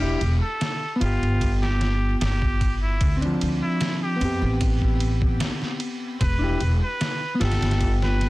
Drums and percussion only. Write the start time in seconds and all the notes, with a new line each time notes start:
0.21 ride
0.61 snare, ride
1.01 ride
1.23 ride
1.41 kick, ride
1.63 snare
1.81 snare, ride
2.21 snare, ride
2.42 kick
2.61 kick, ride
3.01 kick, ride
3.22 ride
3.41 ride
3.81 snare, ride
4.21 ride
4.61 kick, ride
4.82 kick
5.00 ride
5.22 kick
5.40 snare, ride
5.62 snare
5.80 ride
6.21 kick, ride
6.61 ride
7.01 snare, ride
7.41 snare, ride
7.51 snare, ride
7.62 snare, ride
7.71 snare, ride
7.81 kick, ride
8.02 snare
8.21 snare, ride